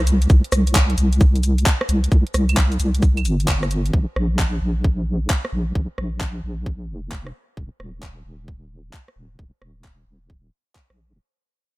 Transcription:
0.00 0.28 C2 medium
0.07 open hi-hat loud
0.07 shaker medium
0.22 closed hi-hat medium
0.22 shaker soft
0.30 0.42 C2 loud
0.30 kick loud
0.30 shaker soft
0.44 closed hi-hat soft
0.52 0.96 C2 medium
0.52 cross-stick medium
0.52 open hi-hat medium
0.52 shaker medium
0.67 closed hi-hat medium
0.67 shaker soft
0.75 kick loud
0.75 clap loud
0.75 shaker soft
0.90 closed hi-hat soft
0.98 1.64 C2 loud
0.98 open hi-hat loud
0.98 shaker medium
1.13 closed hi-hat medium
1.13 shaker soft
1.21 kick loud
1.21 shaker soft
1.36 closed hi-hat soft
1.36 shaker soft
1.43 open hi-hat medium
1.43 shaker medium
1.58 closed hi-hat medium
1.58 shaker soft
1.66 kick loud
1.66 clap loud
1.66 shaker soft
1.81 cross-stick medium
1.89 2.09 C2 medium
1.89 open hi-hat loud
1.89 shaker medium
2.04 closed hi-hat medium
2.04 shaker soft
2.12 2.24 C2 loud
2.12 kick loud
2.12 shaker soft
2.27 closed hi-hat soft
2.34 2.78 C2 medium
2.34 cross-stick medium
2.34 open hi-hat medium
2.34 shaker medium
2.49 closed hi-hat medium
2.49 claves medium
2.49 shaker soft
2.57 kick loud
2.57 clap loud
2.57 shaker soft
2.72 open hi-hat medium
2.72 shaker soft
2.80 3.27 C2 medium
2.80 open hi-hat medium
2.80 shaker medium
2.95 closed hi-hat medium
2.95 shaker soft
3.02 kick loud
3.02 shaker soft
3.17 closed hi-hat soft
3.17 claves medium
3.17 shaker soft
3.25 3.91 G1 loud
3.25 open hi-hat medium
3.25 shaker medium
3.40 closed hi-hat medium
3.40 shaker soft
3.48 kick loud
3.48 clap loud
3.48 claves medium
3.48 shaker soft
3.63 cross-stick medium
3.63 shaker soft
3.71 open hi-hat loud
3.71 shaker medium
3.86 closed hi-hat medium
3.86 shaker soft
3.93 4.06 A#1 medium
3.93 kick loud
4.16 4.59 A#1 medium
4.16 cross-stick medium
4.39 kick loud
4.39 clap loud
4.62 5.28 A#1 loud
4.84 kick loud
5.30 kick loud
5.30 clap loud
5.45 cross-stick medium
5.53 5.73 A#1 medium
5.75 5.88 A#1 loud
5.75 kick loud
5.98 6.41 A#1 medium
5.98 cross-stick medium
6.21 kick loud
6.21 clap loud
6.44 6.90 A#1 loud
6.66 kick loud
6.89 7.32 F1 medium
7.12 kick loud
7.12 clap loud
7.27 cross-stick medium
7.57 7.69 D#1 loud
7.57 kick loud
7.80 8.23 D#1 medium
7.80 cross-stick medium
8.03 kick loud
8.03 clap loud
8.25 8.91 D#1 medium
8.48 kick loud
8.93 kick loud
8.93 clap loud
9.08 cross-stick medium
9.16 9.36 D#1 medium
9.39 9.51 D#1 medium
9.39 kick loud
9.62 10.05 D#1 medium
9.62 cross-stick medium
9.84 kick loud
9.84 clap loud
10.07 10.50 D#1 loud
10.30 kick loud
10.75 kick loud
10.75 clap loud
10.90 11.14 A#1 medium
10.90 cross-stick medium
11.13 11.19 D#1 medium

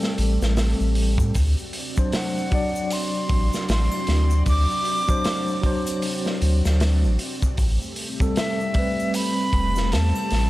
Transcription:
0.00 1.32 G3 medium
0.00 1.31 A3 medium
0.00 1.31 C4 medium
0.00 1.33 C4 medium
0.00 1.31 G4 medium
0.00 1.34 A4 loud
0.00 snare soft
0.00 shaker soft
0.18 0.39 A1 medium
0.18 open hi-hat medium
0.42 0.75 A1 loud
0.42 snare soft
0.42 shaker medium
0.57 snare loud
0.57 open hi-hat medium
0.57 shaker medium
0.80 1.20 A1 medium
0.80 shaker soft
0.95 open hi-hat medium
1.18 1.33 A2 medium
1.18 kick loud
1.18 shaker medium
1.34 1.56 D2 medium
1.34 7.54 C4 medium
1.34 7.54 F#4 medium
1.34 7.54 D5 medium
1.34 kick loud
1.34 open hi-hat medium
1.34 shaker medium
1.58 shaker soft
1.73 open hi-hat medium
1.96 2.48 F#3 medium
1.96 2.48 D4 medium
1.96 2.49 C5 medium
1.96 kick medium
1.96 shaker medium
2.12 2.94 F#5 medium
2.12 snare loud
2.12 open hi-hat loud
2.12 shaker medium
2.37 shaker soft
2.50 5.02 F#3 medium
2.50 5.04 D4 medium
2.50 kick loud
2.50 open hi-hat medium
2.55 5.05 D5 medium
2.75 shaker medium
2.90 3.70 C6 medium
2.90 open hi-hat medium
2.90 triangle medium
2.90 shaker medium
3.14 shaker soft
3.29 3.50 A1 medium
3.29 kick medium
3.29 open hi-hat medium
3.53 snare soft
3.53 shaker medium
3.69 3.89 A1 medium
3.69 4.43 C6 loud
3.69 snare loud
3.69 open hi-hat medium
3.69 shaker medium
3.92 triangle medium
3.92 shaker soft
4.07 4.43 D2 medium
4.07 snare medium
4.07 open hi-hat medium
4.30 shaker medium
4.46 4.67 D2 medium
4.46 5.99 D6 loud
4.46 kick loud
4.46 open hi-hat medium
4.46 shaker medium
4.70 shaker soft
4.85 open hi-hat medium
5.08 5.59 F#3 medium
5.08 5.60 D4 medium
5.08 5.60 C5 loud
5.08 kick medium
5.08 shaker medium
5.24 snare loud
5.24 open hi-hat medium
5.24 shaker medium
5.48 shaker soft
5.61 7.15 F#3 loud
5.61 7.16 D4 medium
5.61 kick loud
5.61 open hi-hat medium
5.66 7.17 C5 loud
5.87 closed hi-hat soft
5.87 triangle medium
5.87 shaker medium
6.02 open hi-hat medium
6.02 shaker medium
6.26 snare soft
6.26 shaker soft
6.42 6.62 D2 medium
6.42 open hi-hat medium
6.65 7.06 D2 medium
6.65 snare soft
6.65 triangle medium
6.65 shaker medium
6.80 snare loud
6.80 open hi-hat medium
6.80 shaker medium
7.04 7.18 A1 medium
7.04 shaker soft
7.19 open hi-hat medium
7.42 kick loud
7.42 shaker medium
7.57 7.79 A1 loud
7.57 10.50 A3 medium
7.57 10.50 C4 medium
7.57 10.50 G4 medium
7.57 kick medium
7.57 open hi-hat medium
7.57 shaker medium
7.82 shaker soft
7.96 open hi-hat medium
8.20 8.71 G3 medium
8.20 8.71 C4 medium
8.20 8.72 A4 medium
8.20 kick loud
8.20 shaker medium
8.36 9.17 E5 loud
8.36 snare loud
8.36 open hi-hat medium
8.36 shaker medium
8.60 shaker soft
8.73 10.50 G3 medium
8.73 10.50 C4 medium
8.73 kick medium
8.73 open hi-hat medium
8.78 10.50 B4 medium
8.99 shaker medium
9.14 9.94 B5 loud
9.14 open hi-hat medium
9.14 triangle medium
9.14 shaker medium
9.37 shaker soft
9.53 9.94 E1 medium
9.53 kick loud
9.53 open hi-hat medium
9.76 snare soft
9.76 shaker medium
9.92 10.13 E2 medium
9.92 10.50 A5 loud
9.92 snare loud
9.92 open hi-hat medium
9.92 shaker medium
10.15 triangle medium
10.15 shaker soft
10.30 10.50 A1 medium
10.30 snare soft
10.30 open hi-hat medium

